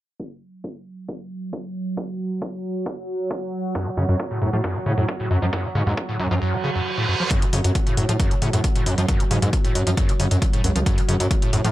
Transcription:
0.20 synth drone F#3, kick
0.64 kick
1.08 kick
1.53 kick
1.97 kick
2.42 kick
2.86 kick
3.31 kick
3.75 acid bass F#2, kick
3.87 acid bass C#3
3.97 analog synth bass F#2, acid bass C#3
4.09 analog synth bass F#2, acid bass F#2
4.20 kick
4.31 acid bass A2
4.42 acid bass F#2, analog synth bass A2
4.53 analog synth bass A2, acid bass F3
4.64 acid bass F#2, kick
4.76 acid bass C#3
4.86 analog synth bass A2, acid bass C#3
4.98 acid bass F#2, analog synth bass A2
5.08 kick
5.20 acid bass A2
5.31 acid bass F#2, analog synth bass F#2
5.42 analog synth bass F#2, acid bass F3
5.53 acid bass F#2, kick
5.64 acid bass C#3
5.75 analog synth bass G#2, acid bass C#3
5.87 acid bass F#2, analog synth bass G#2
5.97 kick
6.09 acid bass A2
6.20 acid bass F#2, analog synth bass F#2
6.31 analog synth bass F#2, acid bass F3
6.42 acid bass F#2, reverse cymbal
6.53 acid bass C#3
6.64 acid bass C#3
6.75 acid bass F#2
6.98 acid bass A2
7.08 acid bass F#2
7.20 acid bass F3
7.31 acid bass F#2, synth drone F#3, kick, closed hi-hat
7.42 acid bass C#3, closed hi-hat
7.53 analog synth bass F#2, acid bass C#3, open hi-hat
7.64 analog synth bass F#2, acid bass F#2, closed hi-hat
7.75 kick, closed hi-hat
7.87 acid bass A2, closed hi-hat
7.97 acid bass F#2, analog synth bass A2, open hi-hat
8.09 analog synth bass A2, acid bass F3, closed hi-hat
8.20 acid bass F#2, kick, closed hi-hat
8.31 acid bass C#3, closed hi-hat
8.42 analog synth bass A2, acid bass C#3, open hi-hat
8.53 acid bass F#2, analog synth bass A2, closed hi-hat
8.64 kick, closed hi-hat
8.76 acid bass A2, closed hi-hat
8.86 acid bass F#2, analog synth bass F#2, open hi-hat
8.98 analog synth bass F#2, acid bass F3, closed hi-hat
9.09 acid bass F#2, kick, closed hi-hat
9.20 acid bass C#3, closed hi-hat
9.31 analog synth bass G#2, acid bass C#3, open hi-hat
9.42 acid bass F#2, analog synth bass G#2, closed hi-hat
9.53 kick, closed hi-hat
9.65 acid bass A2, closed hi-hat
9.75 acid bass F#2, analog synth bass F#2, open hi-hat
9.87 analog synth bass F#2, acid bass F3, closed hi-hat
9.97 acid bass F#2, kick, closed hi-hat
10.09 acid bass C#3, closed hi-hat
10.20 analog synth bass F#2, acid bass C#3, open hi-hat
10.31 acid bass F#2, analog synth bass F#2, closed hi-hat
10.42 kick, closed hi-hat
10.53 acid bass A2, closed hi-hat
10.64 analog synth bass C#2, acid bass F#2, open hi-hat
10.76 analog synth bass C#2, acid bass F3, closed hi-hat
10.86 acid bass F#2, kick, closed hi-hat
10.98 acid bass C#3, closed hi-hat
11.08 analog synth bass F#2, acid bass C#3, open hi-hat
11.20 acid bass F#2, analog synth bass F#2, closed hi-hat
11.31 kick, closed hi-hat
11.42 acid bass A2, closed hi-hat
11.53 acid bass F#2, analog synth bass A2, open hi-hat
11.64 analog synth bass A2, acid bass F3, closed hi-hat

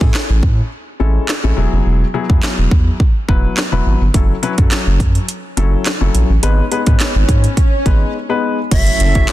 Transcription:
0.01 sub bass A2, grand piano C#4 E4 G#4 A4, kick
0.14 snare, clap
0.30 sub bass A1
0.43 sub bass A2, kick
1.00 sub bass A1, grand piano G#3 C#4 E4 A4
1.29 snare, clap
1.43 sub bass A1, grand piano G#3 C#4 E4 A4
1.57 sub bass E1, grand piano F#3 B3 E4 G#4
1.72 sub bass F1
1.86 sub bass E1
2.14 grand piano F#3 B3 E4 G#4
2.29 sub bass E2, grand piano F#3 B3 E4 G#4, kick
2.43 snare, clap
2.58 sub bass E1
2.71 sub bass E2, kick
3.00 kick
3.28 sub bass E1, grand piano F#3 B3 E4 B4, kick
3.57 snare, clap
3.72 sub bass E1, grand piano F#3 B3 E4 B4
3.86 sub bass G#1
4.01 sub bass G1
4.14 sub bass F#1, grand piano F#3 C#4 E4 A4, kick, closed hi-hat, swell
4.43 grand piano F#3 C#4 E4 B4, closed hi-hat
4.58 sub bass F#2, grand piano C#4 E4 A4, kick, closed hi-hat
4.71 snare, clap, closed hi-hat
4.87 sub bass F#1
5.00 sub bass F#2, kick, closed hi-hat
5.15 closed hi-hat
5.28 closed hi-hat
5.57 sub bass F#1, grand piano F#3 C#4 E4 A4, closed hi-hat
5.86 snare, clap, closed hi-hat
6.01 sub bass F#1, grand piano F#3 C#4 E4 A4
6.14 sub bass A#1, closed hi-hat
6.29 sub bass A1
6.43 sub bass G#1, grand piano G#3 B3 D#4 B4, closed hi-hat
6.71 grand piano G#3 B3 D#4 B4, closed hi-hat
6.86 sub bass G#2, grand piano G#3 D#4 B4, kick, closed hi-hat
7.00 snare, clap, closed hi-hat
7.15 sub bass G#1
7.29 sub bass G#2, kick, closed hi-hat
7.44 closed hi-hat
7.57 kick, closed hi-hat
7.86 sub bass G#1, grand piano G#3 B3 D#4 B4, kick, closed hi-hat
8.29 grand piano G#3 B3 D#4 B4
8.71 sub bass F#1, analog synth pad F#3 C#4 E4 A4, grand piano A3 E4 F#4 C#5, bansuri E5, kick, closed hi-hat, crash, impact
8.86 closed hi-hat
9.00 sub bass F#1, closed hi-hat
9.15 grand piano A3 E4 F#4 C#5, kick, closed hi-hat
9.29 snare, clap, closed hi-hat

